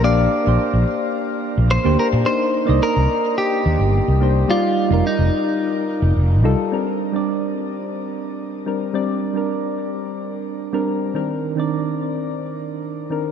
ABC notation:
X:1
M:4/4
L:1/16
Q:1/4=108
K:Bb
V:1 name="Clean electric guitar"
d12 c2 B2 | c4 B4 G8 | F4 E8 z4 | z16 |
z16 | z16 |]
V:2 name="Synth keys"
[B,DGf]3 [B,DGc]8- [B,DGc]2 [B,DGc]3 | [B,DEc]3 [B,Ede]8- [B,Ede]3 [B,DEc]2 | [G,EFd]3 [G,EFB]8- [G,EFB]2 z [G,EFA] z | [G,CDB]3 [G,CDd]8- [G,CDd]3 [G,CDB]2 |
[G,CDd]3 [G,CDB]8- [G,CDB]2 [G,CDB]3 | [E,CDB]3 [E,CDd]8- [E,CDd]3 [E,CDB]2 |]
V:3 name="Fretless electric bass" clef=bass
B,,,2 z B,,, z B,,, z4 z B,,, z D,, z B,, | z3 C,, z C,, z4 E,, G,,, z C,,3 | z3 F,,, z F,,, z4 z F,,, F,,,2 C,, z | z16 |
z16 | z16 |]